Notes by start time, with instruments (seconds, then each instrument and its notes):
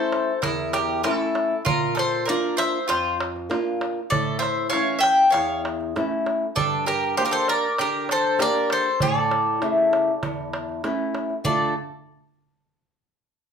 Already playing: nylon-string guitar A3 C#4 E4, mandolin A4, bouzouki C5
0.12 darbuka tek
0.42 nylon-string guitar E2, mandolin E4, bouzouki A#4, darbuka tek, darbuka dum
0.73 mandolin G4, bouzouki A#4, darbuka tek
0.89 darbuka tek
1.04 nylon-string guitar A3 C#4 E4, mandolin E4, bouzouki A4, darbuka tek
1.35 darbuka tek
1.51 darbuka tek
1.65 nylon-string guitar A#2, mandolin F4, bouzouki A#4, darbuka dum
1.95 mandolin A4, darbuka tek
1.99 bouzouki C5
2.26 nylon-string guitar A#3 D4, mandolin A#4, bouzouki D5, darbuka tek
2.30 nylon-string guitar F4
2.57 mandolin C5, bouzouki E5, darbuka tek
2.88 nylon-string guitar F2, mandolin F4, bouzouki C5, darbuka tek
3.21 darbuka tek
3.36 darbuka tek
3.50 nylon-string guitar A#3 D4 F4, darbuka tek
3.81 darbuka tek
4.10 nylon-string guitar A2, mandolin A4, bouzouki D5, darbuka dum
4.39 mandolin C5, bouzouki E5, darbuka tek
4.70 nylon-string guitar A3, mandolin C#5, bouzouki F5, darbuka tek
4.74 nylon-string guitar E3 C#4
4.99 mandolin E5, bouzouki G5
5.03 darbuka tek
5.30 mandolin C#5, bouzouki F5, darbuka tek
5.34 nylon-string guitar E2
5.65 darbuka tek
5.81 darbuka tek
5.96 nylon-string guitar A3 C#4 E4, darbuka tek
6.26 darbuka tek
6.56 nylon-string guitar G2, mandolin D4, bouzouki A4, darbuka dum
6.86 mandolin G4, bouzouki A#4, darbuka tek
7.17 nylon-string guitar A#3 D4 G4, mandolin G4, bouzouki C5, darbuka tek
7.25 mandolin G4, bouzouki A#4
7.31 mandolin A4, bouzouki C5
7.48 mandolin A#4, bouzouki D5, darbuka tek
7.78 nylon-string guitar D3, mandolin G4, bouzouki A#4, darbuka tek
8.09 mandolin A4, bouzouki C5, darbuka tek
8.25 darbuka tek
8.39 nylon-string guitar A#3 D4 G4, mandolin A#4, bouzouki D5, darbuka tek
8.70 mandolin A4, bouzouki C5, darbuka tek
9.00 nylon-string guitar A2, mandolin A4, bouzouki D5, darbuka dum
9.16 darbuka tek
9.31 darbuka tek
9.47 darbuka tek
9.62 nylon-string guitar C#3 A3 E4, darbuka tek
9.78 darbuka tek
9.93 darbuka tek
10.08 darbuka tek
10.23 nylon-string guitar E2, darbuka tek, darbuka dum
10.53 darbuka tek
10.69 darbuka tek
10.84 nylon-string guitar A3 C#4 E4, darbuka tek
11.15 darbuka tek
11.30 darbuka tek
11.44 nylon-string guitar D3 A3 D4 F4 A4, mandolin A4, bouzouki D5, darbuka dum